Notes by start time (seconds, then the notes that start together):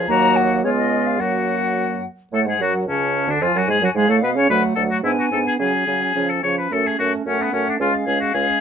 0.08 D#2 F#3 A#3 F#4 A#5
0.36 F#5
0.62 C#2 G#3 B3 F4 C#5
0.77 D#5
1.07 F5
1.19 F#2 F#3 A#3 F#4 F#5
2.32 A2 A3 A4 F#5
2.46 G#2 G#3 G#4
2.60 F#2 F#3 F#4
2.87 C#2 C#3 C#4 A5
3.27 D2 D3 D4
3.41 F2 F3 F4 G#5
3.54 F#2 F#3 F#4
3.67 G#2 G#3 G#4
3.81 F#2 F#3 F#4
3.95 G#2 G#3 G#4 F5
4.08 A2 A3 A4
4.22 B2 B3 B4
4.36 C#3 C#4 C#5
4.49 D2 F#3 A3 B4 F#5
4.76 D2 F#3 A3 A4
4.91 F#4
5.03 G#2 B3 D4 E4 G#5
5.19 F#4
5.31 G#2 B3 D4 A4
5.47 G#4
5.59 C#3 F#3 C#4 G#4 G#5
5.87 C#3 F#3 C#4
6.15 C#3 F3 C#4
6.30 A4
6.43 C#3 F3 C#4 C#5
6.58 B4
6.71 F#2 A3 C#4 A4
6.87 G#4
6.99 F#2 A3 C#4 F#4
7.26 F#2 A3 C#4 F#5
7.42 B3
7.52 F#2 A3 C#4
7.69 D4
7.79 C#2 G#3 C#4 F4 F5
8.06 C#2 G#3 C#4 G#4
8.20 F#4
8.34 C#2 G#3 C#4 G#4